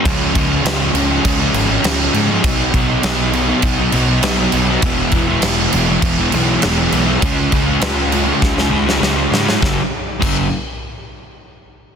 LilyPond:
<<
  \new Staff \with { instrumentName = "Distorted electric guitar" } { \clef bass \time 4/4 \key cis \mixolydian \tempo 4 = 100 <cis eis gis cis'>8 <cis eis gis cis'>16 <eis gis cis'>16 <cis eis gis cis'>8 <cis eis gis cis'>16 <eis gis cis'>8 <eis gis cis'>16 <cis eis gis cis'>16 <eis gis cis'>16 <cis eis gis cis'>16 <eis gis cis'>8 <eis gis cis'>16 | <b, fis b dis'>8 <b, fis b dis'>16 <fis b dis'>16 <b, fis b dis'>8 <b, fis b dis'>16 <fis b dis'>8 <fis b dis'>16 <b, fis b dis'>16 <fis b dis'>16 <b, fis b dis'>16 <fis b dis'>8 <fis b dis'>16 | <e gis b e'>8 <e gis b e'>16 <gis b e'>16 <e gis b e'>8 <e gis b e'>16 <gis b e'>8 <gis b e'>16 <e gis b e'>16 <gis b e'>16 <e gis b e'>16 <gis b e'>8 <gis b e'>16 | <cis gis cis' eis'>8 <cis gis cis' eis'>16 <gis cis' eis'>16 <cis gis cis' eis'>8 <cis gis cis' eis'>16 <gis cis' eis'>8 <gis cis' eis'>16 <cis gis cis' eis'>16 <gis cis' eis'>16 <cis gis cis' eis'>16 <gis cis' eis'>8 <gis cis' eis'>16 |
<fis, cis fis>16 r8. <fis, cis fis>8 r2 r8 | }
  \new Staff \with { instrumentName = "Picked electric bass" } { \clef bass \time 4/4 \key cis \mixolydian cis,8 cis,8 cis,8 cis,8 cis,8 gis,,8 cis,8 gis,8 | b,,8 b,,8 b,,4 b,,8 b,,8 b,,8 b,,8 | e,,8 e,,8 e,,8 e,,8 e,,8 b,,8 e,,8 b,,8 | cis,8 cis,8 cis,4 cis,8 cis,8 cis,8 gis,8 |
fis,,8 r8 fis,,8 r2 r8 | }
  \new DrumStaff \with { instrumentName = "Drums" } \drummode { \time 4/4 <cymc bd>8 <cymc bd>8 <cymc sn>8 cymc8 <cymc bd>8 cymc8 <cymc sn>8 cymc8 | <cymc bd>8 <cymc bd>8 <cymc sn>8 cymc8 <cymc bd>8 cymc8 <cymc sn>8 cymc8 | <cymc bd>8 <cymc bd>8 <cymc sn>8 cymc8 <cymc bd>8 cymc8 <cymc sn>8 cymc8 | <cymc bd>8 <cymc bd>8 <cymc sn>8 cymc8 <bd sn>16 sn8 sn16 sn8 sn16 sn16 |
<bd sn>4 <cymc bd>4 r4 r4 | }
>>